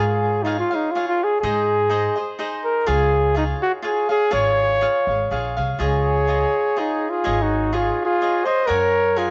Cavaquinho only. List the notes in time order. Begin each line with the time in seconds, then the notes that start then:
Already playing: F4 G#4 C#5 F5
0.45 F4 G#4 C#5 F5
0.71 G#4 C#5 F5
0.95 F4 G#4 C#5 F5
1.43 D#4 G#4 C5 D#5
1.90 D#4 G#4 C5 D#5
2.16 G#4 C5 D#5
2.39 D#4 G#4 C5 D#5
2.86 F4 G#4 C#5 F5
3.34 F4 G#4 C#5 F5
3.82 F4 G#4 C#5 F5
4.09 G#4 C#5 F5
4.31 F4 G#4 C#5 F5
4.81 F4 G#4 C#5 F5
5.08 G#4 C#5 F5
5.31 F4 G#4 C#5 F5
5.57 G#4 C#5 F5
5.79 F4 G#4 C#5 D#5
6.27 F4 G#4 C#5 D#5
6.76 F4 G#4 C#5 D#5
7.24 G#4 C#5 D#5
7.73 F4 G#4 C#5 D#5
8.21 F4 G#4 C#5 D#5
8.45 G#4 C#5 D#5
8.67 A#4 C#5 F#5 G#5
9.16 A#4 C#5 F#5 G#5